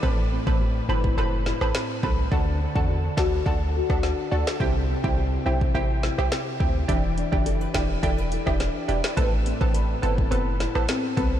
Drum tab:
HH |----------------|----------------|----------------|x-x-x-x-x-x-x-x-|
SD |----------oro---|------o----ro--o|----------oro---|------o----ro--o|
BD |o--o---o------o-|o--o--o-o--o----|o--o---o------o-|o--o--o-o--o----|

HH |x-x-x-x-x-x-x-x-|
SD |----------oro---|
BD |o--o---o------o-|